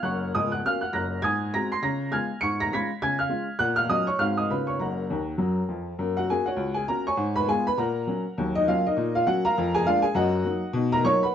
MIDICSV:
0, 0, Header, 1, 2, 480
1, 0, Start_track
1, 0, Key_signature, 6, "major"
1, 0, Tempo, 297177
1, 58, Time_signature, 4, 2, 24, 8
1, 18331, End_track
2, 0, Start_track
2, 0, Title_t, "Upright piano"
2, 0, Program_c, 0, 0
2, 43, Note_on_c, 0, 30, 69
2, 44, Note_on_c, 0, 42, 62
2, 46, Note_on_c, 0, 90, 75
2, 66, Note_on_c, 0, 85, 51
2, 69, Note_on_c, 0, 78, 57
2, 330, Control_c, 0, 64, 127
2, 434, Note_off_c, 0, 30, 0
2, 434, Note_off_c, 0, 42, 0
2, 509, Note_off_c, 0, 85, 0
2, 511, Note_off_c, 0, 78, 0
2, 532, Note_off_c, 0, 90, 0
2, 552, Control_c, 0, 64, 0
2, 560, Note_on_c, 0, 87, 87
2, 568, Note_on_c, 0, 25, 72
2, 569, Note_on_c, 0, 37, 75
2, 587, Note_on_c, 0, 75, 55
2, 834, Note_off_c, 0, 75, 0
2, 835, Note_on_c, 0, 90, 77
2, 839, Note_off_c, 0, 87, 0
2, 865, Note_on_c, 0, 78, 53
2, 940, Note_off_c, 0, 25, 0
2, 941, Note_off_c, 0, 37, 0
2, 1022, Note_off_c, 0, 90, 0
2, 1025, Note_off_c, 0, 78, 0
2, 1046, Note_on_c, 0, 58, 44
2, 1055, Note_on_c, 0, 66, 41
2, 1056, Note_on_c, 0, 61, 49
2, 1063, Note_on_c, 0, 89, 91
2, 1082, Note_on_c, 0, 77, 62
2, 1303, Note_off_c, 0, 58, 0
2, 1309, Note_off_c, 0, 66, 0
2, 1310, Note_off_c, 0, 61, 0
2, 1311, Note_on_c, 0, 90, 72
2, 1322, Note_off_c, 0, 77, 0
2, 1331, Note_off_c, 0, 89, 0
2, 1339, Note_on_c, 0, 78, 58
2, 1500, Note_off_c, 0, 90, 0
2, 1502, Note_off_c, 0, 78, 0
2, 1505, Note_on_c, 0, 42, 54
2, 1505, Note_on_c, 0, 94, 76
2, 1510, Note_on_c, 0, 30, 59
2, 1529, Note_on_c, 0, 82, 56
2, 1534, Note_on_c, 0, 90, 58
2, 1887, Note_off_c, 0, 42, 0
2, 1890, Note_off_c, 0, 30, 0
2, 1962, Note_off_c, 0, 82, 0
2, 1964, Note_off_c, 0, 90, 0
2, 1973, Note_on_c, 0, 92, 102
2, 1978, Note_on_c, 0, 44, 79
2, 1982, Note_off_c, 0, 94, 0
2, 2006, Note_on_c, 0, 87, 70
2, 2013, Note_on_c, 0, 80, 64
2, 2243, Control_c, 0, 64, 127
2, 2387, Note_off_c, 0, 44, 0
2, 2440, Note_off_c, 0, 87, 0
2, 2444, Note_off_c, 0, 80, 0
2, 2457, Note_off_c, 0, 92, 0
2, 2476, Note_on_c, 0, 60, 43
2, 2477, Control_c, 0, 64, 0
2, 2484, Note_on_c, 0, 94, 92
2, 2489, Note_on_c, 0, 56, 49
2, 2495, Note_on_c, 0, 82, 75
2, 2497, Note_on_c, 0, 66, 51
2, 2736, Note_off_c, 0, 60, 0
2, 2745, Note_off_c, 0, 56, 0
2, 2748, Note_off_c, 0, 82, 0
2, 2751, Note_off_c, 0, 66, 0
2, 2762, Note_off_c, 0, 94, 0
2, 2775, Note_on_c, 0, 96, 79
2, 2781, Note_on_c, 0, 84, 74
2, 2943, Note_off_c, 0, 84, 0
2, 2946, Note_on_c, 0, 49, 85
2, 2952, Note_on_c, 0, 94, 82
2, 2953, Note_off_c, 0, 96, 0
2, 2960, Note_on_c, 0, 82, 71
2, 3197, Control_c, 0, 64, 127
2, 3352, Note_off_c, 0, 49, 0
2, 3397, Note_off_c, 0, 82, 0
2, 3410, Note_on_c, 0, 56, 42
2, 3412, Note_on_c, 0, 59, 34
2, 3420, Note_on_c, 0, 92, 82
2, 3426, Note_off_c, 0, 94, 0
2, 3431, Note_on_c, 0, 80, 58
2, 3431, Note_on_c, 0, 89, 62
2, 3435, Note_on_c, 0, 65, 38
2, 3442, Control_c, 0, 64, 0
2, 3677, Note_off_c, 0, 56, 0
2, 3679, Note_off_c, 0, 59, 0
2, 3695, Note_off_c, 0, 65, 0
2, 3873, Note_off_c, 0, 80, 0
2, 3873, Note_off_c, 0, 89, 0
2, 3890, Note_on_c, 0, 97, 104
2, 3900, Note_off_c, 0, 92, 0
2, 3901, Note_on_c, 0, 44, 76
2, 3921, Note_on_c, 0, 85, 85
2, 4162, Control_c, 0, 64, 127
2, 4181, Note_off_c, 0, 85, 0
2, 4185, Note_off_c, 0, 97, 0
2, 4205, Note_on_c, 0, 94, 96
2, 4217, Note_on_c, 0, 82, 75
2, 4309, Note_off_c, 0, 44, 0
2, 4382, Note_off_c, 0, 82, 0
2, 4388, Note_off_c, 0, 94, 0
2, 4401, Control_c, 0, 64, 0
2, 4401, Note_on_c, 0, 56, 50
2, 4412, Note_on_c, 0, 61, 49
2, 4412, Note_on_c, 0, 95, 84
2, 4426, Note_on_c, 0, 65, 55
2, 4428, Note_on_c, 0, 92, 63
2, 4429, Note_on_c, 0, 83, 67
2, 4660, Note_off_c, 0, 56, 0
2, 4668, Note_off_c, 0, 61, 0
2, 4678, Note_off_c, 0, 65, 0
2, 4853, Note_off_c, 0, 92, 0
2, 4854, Note_off_c, 0, 83, 0
2, 4877, Note_off_c, 0, 95, 0
2, 4879, Note_on_c, 0, 49, 72
2, 4881, Note_on_c, 0, 92, 110
2, 4893, Note_on_c, 0, 80, 78
2, 5148, Note_off_c, 0, 80, 0
2, 5148, Note_on_c, 0, 89, 73
2, 5161, Note_off_c, 0, 92, 0
2, 5166, Note_on_c, 0, 77, 64
2, 5280, Note_off_c, 0, 49, 0
2, 5315, Note_on_c, 0, 56, 41
2, 5325, Note_on_c, 0, 61, 41
2, 5334, Note_on_c, 0, 65, 51
2, 5337, Note_off_c, 0, 77, 0
2, 5341, Note_off_c, 0, 89, 0
2, 5587, Note_off_c, 0, 56, 0
2, 5594, Note_off_c, 0, 61, 0
2, 5601, Note_off_c, 0, 65, 0
2, 5797, Note_on_c, 0, 90, 115
2, 5802, Note_on_c, 0, 46, 86
2, 5816, Note_on_c, 0, 78, 79
2, 6073, Note_on_c, 0, 89, 100
2, 6074, Control_c, 0, 64, 127
2, 6089, Note_off_c, 0, 78, 0
2, 6091, Note_on_c, 0, 77, 64
2, 6101, Note_off_c, 0, 90, 0
2, 6220, Note_off_c, 0, 46, 0
2, 6279, Note_off_c, 0, 77, 0
2, 6284, Note_off_c, 0, 89, 0
2, 6287, Note_on_c, 0, 54, 52
2, 6290, Note_on_c, 0, 61, 48
2, 6292, Note_on_c, 0, 87, 96
2, 6302, Note_on_c, 0, 66, 44
2, 6304, Note_on_c, 0, 75, 74
2, 6328, Control_c, 0, 64, 0
2, 6556, Note_off_c, 0, 54, 0
2, 6558, Note_off_c, 0, 61, 0
2, 6567, Note_off_c, 0, 66, 0
2, 6574, Note_off_c, 0, 75, 0
2, 6574, Note_on_c, 0, 85, 91
2, 6588, Note_off_c, 0, 87, 0
2, 6591, Note_on_c, 0, 73, 59
2, 6765, Note_on_c, 0, 44, 85
2, 6768, Note_on_c, 0, 89, 88
2, 6770, Note_off_c, 0, 73, 0
2, 6775, Note_off_c, 0, 85, 0
2, 6776, Note_on_c, 0, 56, 46
2, 6783, Note_on_c, 0, 60, 42
2, 6793, Note_on_c, 0, 66, 36
2, 6793, Note_on_c, 0, 77, 73
2, 7043, Note_off_c, 0, 56, 0
2, 7048, Note_off_c, 0, 60, 0
2, 7049, Control_c, 0, 64, 127
2, 7056, Note_off_c, 0, 66, 0
2, 7059, Note_off_c, 0, 77, 0
2, 7066, Note_on_c, 0, 87, 71
2, 7067, Note_off_c, 0, 89, 0
2, 7075, Note_on_c, 0, 75, 55
2, 7182, Note_off_c, 0, 44, 0
2, 7253, Note_off_c, 0, 75, 0
2, 7261, Note_off_c, 0, 87, 0
2, 7272, Note_on_c, 0, 58, 40
2, 7274, Note_on_c, 0, 49, 63
2, 7275, Note_on_c, 0, 83, 67
2, 7284, Control_c, 0, 64, 0
2, 7286, Note_on_c, 0, 63, 37
2, 7286, Note_on_c, 0, 71, 52
2, 7289, Note_on_c, 0, 65, 34
2, 7528, Control_c, 0, 64, 127
2, 7535, Note_off_c, 0, 58, 0
2, 7543, Note_on_c, 0, 85, 69
2, 7545, Note_off_c, 0, 63, 0
2, 7547, Note_off_c, 0, 65, 0
2, 7547, Note_off_c, 0, 71, 0
2, 7561, Note_off_c, 0, 83, 0
2, 7576, Note_on_c, 0, 73, 53
2, 7679, Note_off_c, 0, 49, 0
2, 7740, Note_off_c, 0, 85, 0
2, 7744, Note_off_c, 0, 73, 0
2, 7745, Note_on_c, 0, 30, 66
2, 7746, Note_on_c, 0, 42, 53
2, 7748, Note_on_c, 0, 82, 71
2, 7766, Control_c, 0, 64, 0
2, 7777, Note_on_c, 0, 70, 44
2, 7778, Note_on_c, 0, 78, 54
2, 8006, Control_c, 0, 64, 127
2, 8130, Note_off_c, 0, 30, 0
2, 8131, Note_off_c, 0, 42, 0
2, 8234, Note_on_c, 0, 51, 61
2, 8241, Note_on_c, 0, 39, 72
2, 8247, Control_c, 0, 64, 0
2, 8592, Note_off_c, 0, 51, 0
2, 8597, Note_off_c, 0, 39, 0
2, 8687, Note_on_c, 0, 54, 66
2, 8692, Note_on_c, 0, 42, 63
2, 9055, Note_off_c, 0, 54, 0
2, 9059, Note_off_c, 0, 42, 0
2, 9140, Note_off_c, 0, 70, 0
2, 9140, Note_off_c, 0, 78, 0
2, 9185, Note_on_c, 0, 53, 52
2, 9187, Note_on_c, 0, 41, 58
2, 9190, Note_off_c, 0, 82, 0
2, 9547, Note_off_c, 0, 53, 0
2, 9548, Note_off_c, 0, 41, 0
2, 9671, Note_on_c, 0, 42, 77
2, 9713, Note_on_c, 0, 58, 51
2, 9922, Control_c, 0, 64, 127
2, 9962, Note_on_c, 0, 78, 88
2, 9965, Note_off_c, 0, 58, 0
2, 9996, Note_on_c, 0, 66, 62
2, 10079, Note_off_c, 0, 42, 0
2, 10151, Note_off_c, 0, 78, 0
2, 10156, Note_off_c, 0, 66, 0
2, 10174, Control_c, 0, 64, 0
2, 10177, Note_on_c, 0, 80, 88
2, 10178, Note_on_c, 0, 58, 52
2, 10182, Note_on_c, 0, 61, 43
2, 10194, Note_on_c, 0, 66, 63
2, 10194, Note_on_c, 0, 68, 67
2, 10431, Note_on_c, 0, 78, 76
2, 10434, Note_off_c, 0, 58, 0
2, 10437, Note_off_c, 0, 61, 0
2, 10438, Note_off_c, 0, 66, 0
2, 10443, Note_off_c, 0, 68, 0
2, 10453, Note_off_c, 0, 80, 0
2, 10462, Note_on_c, 0, 73, 65
2, 10463, Note_on_c, 0, 66, 67
2, 10602, Note_on_c, 0, 37, 80
2, 10892, Note_on_c, 0, 80, 88
2, 10898, Note_off_c, 0, 66, 0
2, 10898, Note_off_c, 0, 73, 0
2, 10915, Note_off_c, 0, 78, 0
2, 10917, Note_on_c, 0, 68, 63
2, 11022, Note_off_c, 0, 37, 0
2, 11095, Note_off_c, 0, 68, 0
2, 11096, Note_off_c, 0, 80, 0
2, 11116, Note_on_c, 0, 82, 96
2, 11120, Note_on_c, 0, 58, 38
2, 11128, Note_on_c, 0, 66, 50
2, 11129, Note_on_c, 0, 61, 50
2, 11133, Note_on_c, 0, 70, 63
2, 11381, Note_off_c, 0, 58, 0
2, 11387, Note_off_c, 0, 61, 0
2, 11387, Note_off_c, 0, 66, 0
2, 11392, Note_off_c, 0, 70, 0
2, 11403, Note_off_c, 0, 82, 0
2, 11417, Note_on_c, 0, 85, 98
2, 11425, Note_on_c, 0, 73, 63
2, 11434, Note_on_c, 0, 80, 79
2, 11582, Note_on_c, 0, 44, 94
2, 11852, Control_c, 0, 64, 127
2, 11859, Note_off_c, 0, 73, 0
2, 11864, Note_off_c, 0, 80, 0
2, 11882, Note_on_c, 0, 83, 110
2, 11888, Note_off_c, 0, 85, 0
2, 11903, Note_on_c, 0, 71, 71
2, 11993, Note_off_c, 0, 44, 0
2, 12069, Note_off_c, 0, 71, 0
2, 12071, Note_off_c, 0, 83, 0
2, 12084, Note_on_c, 0, 56, 47
2, 12087, Control_c, 0, 64, 0
2, 12091, Note_on_c, 0, 59, 51
2, 12092, Note_on_c, 0, 80, 105
2, 12098, Note_on_c, 0, 65, 61
2, 12109, Note_on_c, 0, 68, 68
2, 12344, Note_off_c, 0, 56, 0
2, 12349, Note_off_c, 0, 59, 0
2, 12354, Note_off_c, 0, 65, 0
2, 12360, Note_off_c, 0, 68, 0
2, 12370, Note_off_c, 0, 80, 0
2, 12388, Note_on_c, 0, 83, 108
2, 12404, Note_on_c, 0, 71, 67
2, 12557, Note_on_c, 0, 46, 87
2, 12559, Note_off_c, 0, 71, 0
2, 12561, Note_on_c, 0, 82, 83
2, 12563, Note_off_c, 0, 83, 0
2, 12584, Note_on_c, 0, 78, 61
2, 12585, Note_on_c, 0, 70, 65
2, 12818, Control_c, 0, 64, 127
2, 12961, Note_off_c, 0, 46, 0
2, 13036, Note_on_c, 0, 54, 46
2, 13041, Control_c, 0, 64, 0
2, 13049, Note_on_c, 0, 58, 39
2, 13053, Note_on_c, 0, 61, 51
2, 13297, Note_off_c, 0, 54, 0
2, 13307, Note_off_c, 0, 58, 0
2, 13310, Note_off_c, 0, 61, 0
2, 13460, Note_off_c, 0, 70, 0
2, 13460, Note_off_c, 0, 78, 0
2, 13513, Note_off_c, 0, 82, 0
2, 13531, Note_on_c, 0, 39, 84
2, 13564, Note_on_c, 0, 54, 58
2, 13760, Control_c, 0, 64, 127
2, 13812, Note_off_c, 0, 54, 0
2, 13817, Note_on_c, 0, 75, 105
2, 13847, Note_on_c, 0, 63, 77
2, 13928, Note_off_c, 0, 39, 0
2, 13997, Note_off_c, 0, 75, 0
2, 14000, Note_off_c, 0, 63, 0
2, 14008, Control_c, 0, 64, 0
2, 14020, Note_on_c, 0, 77, 104
2, 14021, Note_on_c, 0, 54, 60
2, 14021, Note_on_c, 0, 58, 59
2, 14033, Note_on_c, 0, 61, 58
2, 14040, Note_on_c, 0, 65, 77
2, 14274, Note_off_c, 0, 58, 0
2, 14275, Note_off_c, 0, 54, 0
2, 14284, Note_off_c, 0, 61, 0
2, 14284, Note_off_c, 0, 65, 0
2, 14292, Note_off_c, 0, 77, 0
2, 14319, Note_on_c, 0, 75, 92
2, 14332, Note_on_c, 0, 63, 71
2, 14335, Note_on_c, 0, 70, 71
2, 14482, Note_on_c, 0, 46, 90
2, 14751, Note_off_c, 0, 63, 0
2, 14753, Note_off_c, 0, 70, 0
2, 14776, Note_off_c, 0, 75, 0
2, 14783, Note_on_c, 0, 77, 97
2, 14806, Note_on_c, 0, 65, 76
2, 14882, Note_off_c, 0, 46, 0
2, 14958, Note_off_c, 0, 77, 0
2, 14959, Note_off_c, 0, 65, 0
2, 14969, Note_on_c, 0, 54, 48
2, 14969, Note_on_c, 0, 78, 105
2, 14977, Note_on_c, 0, 61, 61
2, 14982, Note_on_c, 0, 58, 42
2, 14985, Note_on_c, 0, 66, 80
2, 15225, Note_off_c, 0, 54, 0
2, 15231, Note_off_c, 0, 61, 0
2, 15235, Note_off_c, 0, 58, 0
2, 15235, Note_off_c, 0, 66, 0
2, 15245, Note_off_c, 0, 78, 0
2, 15261, Note_on_c, 0, 82, 117
2, 15274, Note_on_c, 0, 70, 84
2, 15276, Note_on_c, 0, 77, 87
2, 15471, Note_on_c, 0, 41, 102
2, 15682, Control_c, 0, 64, 127
2, 15700, Note_off_c, 0, 70, 0
2, 15701, Note_off_c, 0, 77, 0
2, 15725, Note_off_c, 0, 82, 0
2, 15741, Note_on_c, 0, 80, 127
2, 15753, Note_on_c, 0, 68, 105
2, 15857, Note_off_c, 0, 41, 0
2, 15910, Note_off_c, 0, 68, 0
2, 15916, Note_off_c, 0, 80, 0
2, 15920, Control_c, 0, 64, 0
2, 15933, Note_on_c, 0, 56, 58
2, 15933, Note_on_c, 0, 77, 121
2, 15941, Note_on_c, 0, 62, 78
2, 15944, Note_on_c, 0, 58, 71
2, 15952, Note_on_c, 0, 65, 89
2, 16187, Note_off_c, 0, 56, 0
2, 16188, Note_on_c, 0, 80, 110
2, 16193, Note_off_c, 0, 62, 0
2, 16195, Note_off_c, 0, 58, 0
2, 16197, Note_off_c, 0, 65, 0
2, 16206, Note_off_c, 0, 77, 0
2, 16210, Note_on_c, 0, 68, 80
2, 16377, Note_off_c, 0, 68, 0
2, 16379, Note_off_c, 0, 80, 0
2, 16387, Note_on_c, 0, 42, 100
2, 16402, Note_on_c, 0, 78, 105
2, 16403, Note_on_c, 0, 66, 75
2, 16416, Note_on_c, 0, 75, 85
2, 16638, Control_c, 0, 64, 127
2, 16791, Note_off_c, 0, 42, 0
2, 16877, Note_on_c, 0, 54, 47
2, 16879, Control_c, 0, 64, 0
2, 16886, Note_on_c, 0, 58, 53
2, 16895, Note_on_c, 0, 63, 48
2, 17135, Note_off_c, 0, 54, 0
2, 17142, Note_off_c, 0, 58, 0
2, 17148, Note_off_c, 0, 63, 0
2, 17284, Note_off_c, 0, 66, 0
2, 17291, Note_off_c, 0, 75, 0
2, 17336, Note_on_c, 0, 47, 109
2, 17348, Note_off_c, 0, 78, 0
2, 17386, Note_on_c, 0, 63, 67
2, 17592, Control_c, 0, 64, 127
2, 17636, Note_off_c, 0, 63, 0
2, 17644, Note_on_c, 0, 82, 127
2, 17646, Note_on_c, 0, 70, 88
2, 17743, Note_off_c, 0, 47, 0
2, 17813, Note_off_c, 0, 70, 0
2, 17825, Note_off_c, 0, 82, 0
2, 17837, Note_on_c, 0, 54, 58
2, 17838, Control_c, 0, 64, 0
2, 17842, Note_on_c, 0, 85, 115
2, 17848, Note_on_c, 0, 63, 59
2, 17852, Note_on_c, 0, 58, 63
2, 17864, Note_on_c, 0, 73, 105
2, 18094, Note_off_c, 0, 54, 0
2, 18103, Note_off_c, 0, 63, 0
2, 18105, Note_off_c, 0, 58, 0
2, 18111, Note_off_c, 0, 73, 0
2, 18118, Note_off_c, 0, 85, 0
2, 18138, Note_on_c, 0, 83, 89
2, 18163, Note_on_c, 0, 71, 61
2, 18171, Note_on_c, 0, 78, 59
2, 18331, Note_off_c, 0, 71, 0
2, 18331, Note_off_c, 0, 78, 0
2, 18331, Note_off_c, 0, 83, 0
2, 18331, End_track
0, 0, End_of_file